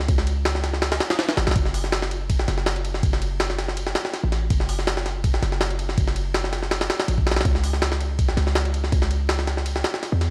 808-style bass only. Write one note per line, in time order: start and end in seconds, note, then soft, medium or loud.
0.09 0.99 C#2 loud
1.37 1.46 G#1 loud
1.47 1.55 B1 loud
1.56 2.47 F#1 loud
2.48 3.02 F#1 medium
3.03 3.94 F#1 loud
4.24 4.49 A1 medium
4.50 5.41 F#1 loud
5.42 5.96 F#1 loud
5.98 6.88 F#1 loud
7.08 7.28 A1 medium
7.27 7.43 B1 medium
7.45 8.36 C#2 loud
8.37 8.91 C#2 loud
8.92 9.83 C#2 loud
10.12 10.30 E2 loud